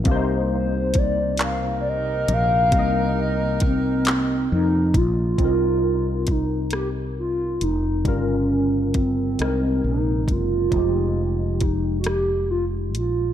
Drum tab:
HH |x-xx-x|x-xx-x|x-xx-x|x-xx-x|
CP |---x--|---x--|------|------|
SD |------|------|---r--|---r--|
BD |o-o---|o-o--o|o-o---|o-o--o|

HH |x-xx-x|
CP |------|
SD |---r--|
BD |o-o---|